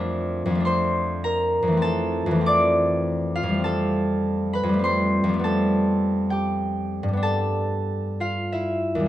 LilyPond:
<<
  \new Staff \with { instrumentName = "Harp" } { \time 3/4 \key d \minor \tempo 4 = 100 <f' a' d'' f'' a''>4 <c'' c'''>4 <bes' bes''>4 | <a' a''>4 <d'' d'''>4. <f' f''>8 | \key f \lydian <a' a''>4. <b' b''>8 <c'' c'''>4 | <a' a''>4. <g' g''>4. |
<a' a''>4. <f' f''>8 <e' e''>4 | }
  \new Staff \with { instrumentName = "Harp" } { \clef bass \time 3/4 \key d \minor <f, f a d'>4 <f, f a d'>2 | <f, e a c'>4 <f, e a c'>2 | \key f \lydian <f, g a c'>2 <f, g a c'>4 | <f, g a b>2. |
<g, g b d'>2. | }
>>